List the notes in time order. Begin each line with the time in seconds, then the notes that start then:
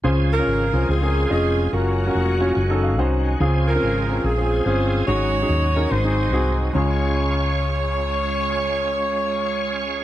0.04 C#2 C#3 F3 G#3 C4 C#4 F4 G#4 C5
0.32 F4 A#4
0.38 C#4 F4 G#4 C#5
0.47 G#1
0.73 C2 C#4 F4 G#4 C5
0.89 C#2 C4 F4 G#4
1.01 C#4 F4 G#4 A#4
1.30 F1 C4 C#4 F4 G#4 D#5
1.72 F#1 F#3 A#3 C#4 F4 F#4 A#4
2.06 C#4 F4 F#4 A#4
2.15 F1
2.40 C#4 F4 F#4 C#5
2.57 F#1 D#3 F#3
2.70 C#4 D#4 F#4 A4
2.83 F5
2.98 C2 C#4 D#4 F#4 C5 F#5
3.25 G#5
3.40 C#2 C#3 F3 C4 C#4 F4 G#4
3.68 F4 A#4
3.75 C4 C#4 F4 A#4
3.83 G#1
4.09 C4 C#4 F4 A#4
4.24 A#1 C4 F4 G#4
4.37 C4 C#4 F4 G#4
4.65 G1 C4 C#4 F4 G#4 C5
5.07 G#1 G#2 F#3 C#4 D#4 F#4 G#4 C#5
5.42 C#4 D#4 F#4 G#4
5.49 D#2
5.76 C#4 D#4 F#4 A#4
5.90 G#1 G#2 C4 D#4 F#4 C5
6.04 C4 D#4 F#4 G#4
6.32 C2 C4 D#4 F#4 G#4
6.73 C#2 G#3 C#4 F4 G#4 C#5